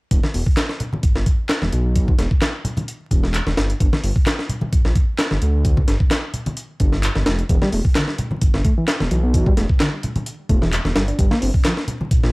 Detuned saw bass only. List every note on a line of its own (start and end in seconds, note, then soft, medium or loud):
0.11 0.19 E1 loud
0.34 0.42 E1 loud
1.03 1.13 G1 soft
1.16 1.23 G1 medium
1.62 1.69 E1 medium
1.73 2.13 B1 medium
2.19 2.27 E1 loud
3.11 3.40 E1 loud
3.47 3.54 E1 medium
3.57 3.73 G1 medium
3.80 3.88 G1 loud
4.03 4.11 G1 loud
4.73 4.83 A#1 soft
4.85 4.92 A#1 medium
5.31 5.38 G1 medium
5.42 5.82 D2 medium
5.88 5.96 G1 loud
6.80 7.09 G1 loud
7.16 7.23 G1 medium
7.27 7.42 F1 medium
7.49 7.58 E1 loud
7.73 7.81 E1 loud
8.42 8.52 G1 soft
8.54 8.61 G1 medium
9.01 9.07 E1 medium
9.11 9.51 B1 medium
9.57 9.65 E1 loud
10.49 10.78 E1 loud
10.85 10.92 E1 medium
10.96 11.11 G1 medium
11.19 11.27 G1 loud
11.42 11.50 G1 loud
12.11 12.21 A#1 soft
12.24 12.31 A#1 medium